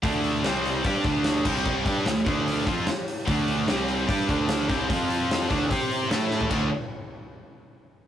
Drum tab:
CC |--------------x-|----------------|----------------|----------------|
HH |o-o-o-o-o-o-o---|--o-o-o-o-o-o-o-|o-o-o-o-o-o-o-o-|o-o-o-o-o-o-o---|
SD |----o-------o---|----o-------o---|----o-------o---|----o-------o-o-|
FT |----------------|----------------|----------------|---------------o|
BD |o-------o-o---o-|o-o---o---o-----|o-------o-o---o-|o-----o-o-------|

CC |x---------------|
HH |----------------|
SD |----------------|
FT |----------------|
BD |o---------------|